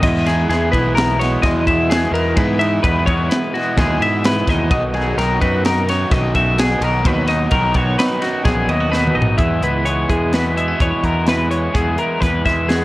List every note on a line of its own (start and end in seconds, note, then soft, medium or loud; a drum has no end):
0.01 0.44 E2 loud
0.01 1.89 E2 medium
0.01 0.48 E3 medium
0.01 0.27 G#3 medium
0.01 0.26 B3 loud
0.01 0.24 E4 loud
0.01 0.27 D#5 medium
0.01 kick loud
0.01 ride loud
0.01 crash loud
0.25 0.50 G#3 medium
0.25 0.50 B3 medium
0.25 0.52 E4 medium
0.25 0.48 G#4 medium
0.25 snare soft
0.25 ride medium
0.29 1.93 D#4 medium
0.49 0.70 E2 medium
0.49 1.41 E3 medium
0.49 2.34 E3 medium
0.49 0.76 G#3 medium
0.49 0.74 B3 medium
0.49 0.72 E4 medium
0.49 0.71 G#4 medium
0.49 snare soft
0.49 ride medium
0.72 1.36 B1 medium
0.72 1.21 B3 medium
0.72 1.18 E4 medium
0.72 1.67 G#4 medium
0.72 0.95 B4 medium
0.72 kick medium
0.72 ride medium
0.76 1.21 G#3 medium
0.95 1.19 A#4 medium
0.95 snare loud
0.95 ride medium
1.19 2.34 B2 medium
1.19 1.42 G#3 medium
1.19 1.44 B3 medium
1.19 1.44 E4 medium
1.19 1.42 C#5 medium
1.19 snare soft
1.19 ride medium
1.42 2.06 E2 loud
1.42 1.88 E3 medium
1.42 1.89 G#3 medium
1.42 2.35 G#3 medium
1.42 1.90 B3 medium
1.42 1.91 E4 loud
1.42 1.66 D#5 medium
1.42 kick loud
1.42 snare soft
1.42 ride loud
1.67 2.35 G#4 medium
1.67 1.90 E5 medium
1.67 kick medium
1.67 ride medium
1.89 2.35 E2 medium
1.89 2.34 E3 loud
1.89 2.14 G#3 medium
1.89 2.13 B3 medium
1.89 2.11 E4 loud
1.89 2.13 G#4 medium
1.89 snare loud
1.89 ride loud
2.11 2.33 E2 medium
2.11 2.35 G#3 medium
2.11 2.37 B3 medium
2.11 2.39 D#4 medium
2.11 2.36 E4 medium
2.11 2.37 A#4 medium
2.11 ride medium
2.35 4.22 E2 medium
2.35 2.78 G#2 loud
2.35 2.81 E3 medium
2.35 2.60 G#3 medium
2.35 2.60 B3 loud
2.35 2.57 E4 medium
2.35 2.60 B4 medium
2.35 kick loud
2.35 ride loud
2.59 2.82 G#3 medium
2.59 2.84 B3 medium
2.59 4.26 D#4 medium
2.59 2.84 E4 medium
2.59 2.82 E5 medium
2.59 ride medium
2.82 3.04 E2 medium
2.82 3.30 E3 medium
2.82 4.68 E3 medium
2.82 3.08 G#3 medium
2.82 3.07 B3 medium
2.82 3.05 E4 medium
2.82 3.06 B4 medium
2.82 kick loud
2.82 ride medium
3.06 3.28 E2 loud
3.06 3.55 G#3 medium
3.06 3.55 B3 medium
3.06 3.52 E4 medium
3.06 3.99 G#4 medium
3.06 3.29 C#5 medium
3.06 kick medium
3.06 ride medium
3.29 3.53 B4 medium
3.29 snare loud
3.29 ride loud
3.53 4.68 B2 medium
3.53 3.77 G#3 medium
3.53 3.79 B3 medium
3.53 3.79 E4 medium
3.53 3.78 F#4 medium
3.53 snare soft
3.53 ride medium
3.77 3.98 D#2 loud
3.77 4.22 E3 medium
3.77 4.68 G#3 medium
3.77 4.24 G#3 medium
3.77 4.25 B3 loud
3.77 4.25 E4 loud
3.77 4.01 G#4 medium
3.77 kick loud
3.77 snare soft
3.77 ride loud
3.99 4.42 G#2 medium
3.99 4.68 G#4 medium
3.99 4.25 E5 medium
3.99 ride medium
4.23 4.70 E2 medium
4.23 4.69 E3 medium
4.23 4.48 G#3 medium
4.23 4.48 B3 loud
4.23 4.45 E4 loud
4.23 4.49 B4 medium
4.23 snare loud
4.23 ride loud
4.46 4.68 D#2 medium
4.46 4.70 G#3 medium
4.46 4.72 B3 medium
4.46 4.97 D#4 medium
4.46 4.69 E4 medium
4.46 4.70 D#5 medium
4.46 kick medium
4.46 snare soft
4.46 ride medium
4.70 5.13 B1 loud
4.70 6.09 B2 loud
4.70 5.17 B2 medium
4.70 5.15 D#3 medium
4.70 4.95 F#3 medium
4.70 4.94 B3 loud
4.70 4.93 D#4 medium
4.70 4.94 D#5 loud
4.70 kick loud
4.70 ride loud
4.93 5.17 F#3 medium
4.93 5.18 B3 medium
4.93 5.19 D#4 medium
4.93 5.65 D#4 medium
4.93 5.17 G#4 medium
4.93 snare soft
4.93 ride medium
5.16 5.38 B1 loud
5.16 5.63 D#3 medium
5.16 7.03 D#3 medium
5.16 5.42 F#3 medium
5.16 5.41 B3 medium
5.16 5.39 D#4 medium
5.16 5.41 A#4 medium
5.16 snare soft
5.16 ride loud
5.39 6.04 F#2 medium
5.39 5.88 F#3 medium
5.39 5.87 B3 medium
5.39 5.85 D#4 medium
5.39 6.34 F#4 medium
5.39 5.65 B4 medium
5.39 kick medium
5.39 ride medium
5.65 6.81 D#4 medium
5.65 5.88 A#4 medium
5.65 snare loud
5.65 ride medium
5.86 6.59 F#2 medium
5.86 6.09 F#3 medium
5.86 6.11 B3 medium
5.86 6.11 D#4 medium
5.86 6.12 C#5 medium
5.86 snare soft
5.86 ride medium
6.09 6.74 B1 loud
6.09 6.57 B2 loud
6.09 6.57 D#3 loud
6.09 6.58 F#3 medium
6.09 6.60 B3 loud
6.09 6.59 D#4 loud
6.09 6.35 D#5 medium
6.09 kick loud
6.09 snare soft
6.09 ride loud
6.35 7.02 F#4 medium
6.35 6.58 E5 medium
6.35 kick medium
6.35 ride medium
6.58 7.01 B2 loud
6.58 7.03 B2 medium
6.58 7.02 D#3 loud
6.58 6.82 F#3 medium
6.58 6.81 B3 loud
6.58 6.79 D#4 loud
6.58 6.83 G#4 medium
6.58 snare loud
6.58 ride loud
6.80 7.02 B1 medium
6.80 7.03 F#3 medium
6.80 7.03 B3 medium
6.80 7.04 D#4 medium
6.80 7.02 D#4 medium
6.80 7.06 A#4 medium
6.80 ride medium
7.02 7.47 D#2 loud
7.02 7.50 B2 medium
7.02 7.52 B2 medium
7.02 7.48 D#3 medium
7.02 7.27 F#3 loud
7.02 7.26 B3 medium
7.02 7.25 D#4 loud
7.02 7.29 B4 medium
7.02 kick loud
7.02 ride loud
7.26 7.50 F#3 medium
7.26 7.50 B3 medium
7.26 7.51 D#4 medium
7.26 7.98 D#4 medium
7.26 7.51 D#5 medium
7.26 snare soft
7.26 ride medium
7.50 7.73 B1 loud
7.50 7.97 D#3 medium
7.50 9.37 D#3 medium
7.50 7.75 F#3 medium
7.50 7.73 B3 medium
7.50 7.71 D#4 medium
7.50 7.75 A#4 medium
7.50 kick loud
7.50 ride loud
7.73 7.96 B1 loud
7.73 8.21 F#3 medium
7.73 8.19 B3 medium
7.73 8.18 D#4 medium
7.73 7.98 C#5 medium
7.73 kick medium
7.73 ride medium
7.77 8.68 F#4 medium
7.99 9.13 D#4 medium
7.99 8.22 B4 medium
7.99 snare loud
7.99 ride medium
8.19 8.92 F#2 medium
8.19 8.43 F#3 medium
8.19 8.43 B3 medium
8.19 8.44 D#4 medium
8.19 8.45 F#4 medium
8.19 snare soft
8.19 ride medium
8.42 8.66 A#1 loud
8.42 8.88 B2 loud
8.42 8.89 D#3 loud
8.42 8.90 F#3 loud
8.42 8.91 B3 loud
8.42 8.91 D#4 loud
8.42 8.69 G#4 medium
8.42 kick loud
8.42 ride medium
8.46 snare soft
8.68 9.10 D#2 medium
8.68 8.80 E4 medium
8.68 8.93 D#5 medium
8.68 ride medium
8.80 9.38 F#4 soft
8.90 9.37 B2 medium
8.90 9.35 B2 medium
8.90 9.37 D#3 medium
8.90 9.16 F#3 medium
8.90 9.14 B3 loud
8.90 9.12 D#4 loud
8.90 9.16 B4 medium
8.90 snare medium
9.07 mid tom medium
9.13 9.37 A#1 medium
9.13 9.38 F#3 medium
9.13 9.38 B3 medium
9.13 9.37 D#4 medium
9.13 9.36 D#4 medium
9.13 9.37 D#5 medium
9.22 floor tom loud
9.37 11.26 E2 medium
9.37 9.60 E2 loud
9.37 9.84 E3 medium
9.37 9.63 G#3 medium
9.37 9.62 B3 medium
9.37 9.60 E4 medium
9.37 9.86 G#4 medium
9.37 9.62 E5 medium
9.37 kick loud
9.37 closed hi-hat medium
9.61 10.04 C#2 medium
9.61 10.09 G#3 soft
9.61 9.85 G#3 soft
9.61 9.86 B3 medium
9.61 9.87 E4 medium
9.61 9.87 B4 medium
9.61 closed hi-hat medium
9.85 10.31 E3 medium
9.85 10.11 G#3 medium
9.85 10.09 B3 medium
9.85 10.07 E4 medium
9.85 10.33 B4 medium
9.85 10.09 C#5 medium
9.85 closed hi-hat medium
10.08 10.73 E2 medium
10.08 12.46 E3 medium
10.08 11.04 G#3 medium
10.08 10.33 G#3 medium
10.08 10.34 B3 medium
10.08 10.34 E4 medium
10.08 10.33 G#4 medium
10.08 kick medium
10.08 closed hi-hat medium
10.32 10.58 E3 medium
10.32 10.56 G#3 medium
10.32 10.55 B3 medium
10.32 10.55 E4 medium
10.32 10.80 F#4 soft
10.32 10.58 B4 medium
10.32 snare loud
10.32 closed hi-hat medium
10.55 11.71 B2 medium
10.55 10.78 E3 medium
10.55 10.79 G#3 medium
10.55 10.68 B3 medium
10.55 10.80 B3 medium
10.55 10.81 E4 medium
10.55 10.81 E5 medium
10.55 closed hi-hat medium
10.68 11.75 C#4 soft
10.79 10.91 E2 medium
10.79 11.25 E3 medium
10.79 11.04 G#3 medium
10.79 11.02 B3 medium
10.79 11.01 E4 medium
10.79 11.28 B4 medium
10.79 11.05 C#5 medium
10.79 kick loud
10.79 closed hi-hat medium
11.01 11.67 E2 medium
11.01 11.51 G#3 soft
11.01 11.25 G#3 soft
11.01 11.26 B3 medium
11.01 11.27 E4 medium
11.01 11.28 A#4 medium
11.01 kick medium
11.01 closed hi-hat soft
11.25 11.75 E2 medium
11.25 11.72 E3 medium
11.25 11.50 G#3 medium
11.25 11.49 B3 medium
11.25 11.48 E4 medium
11.25 11.73 F#4 medium
11.25 11.50 B4 medium
11.25 snare loud
11.25 closed hi-hat medium
11.48 11.72 G#3 soft
11.48 11.73 G#3 soft
11.48 11.73 B3 medium
11.48 11.75 E4 medium
11.48 11.75 C#5 medium
11.48 closed hi-hat medium
11.72 11.96 E2 medium
11.72 12.85 E2 medium
11.72 12.19 E3 medium
11.72 11.98 G#3 medium
11.72 11.97 B3 medium
11.72 11.96 E4 medium
11.72 11.98 G#4 medium
11.72 12.23 G#4 medium
11.72 kick loud
11.72 closed hi-hat medium
11.97 12.45 G#3 soft
11.97 12.20 G#3 soft
11.97 12.21 B3 medium
11.97 12.22 E4 medium
11.97 12.21 A#4 medium
11.97 closed hi-hat soft
12.20 12.43 E2 medium
12.20 12.67 E3 medium
12.20 12.47 G#3 medium
12.20 12.45 B3 medium
12.20 12.45 E4 medium
12.20 12.45 B4 medium
12.20 12.70 B4 medium
12.20 kick medium
12.20 closed hi-hat medium
12.24 snare soft
12.45 12.85 E2 medium
12.45 12.85 E3 medium
12.45 12.85 G#3 medium
12.45 12.68 G#3 medium
12.45 12.68 B3 soft
12.45 12.70 E4 medium
12.45 12.69 E5 medium
12.45 kick medium
12.45 snare soft
12.45 closed hi-hat soft
12.68 12.85 E3 medium
12.68 12.85 G#3 medium
12.68 12.85 B3 medium
12.68 12.85 E4 medium
12.68 12.85 F#4 soft
12.68 12.85 G#4 medium
12.68 snare medium
12.68 closed hi-hat medium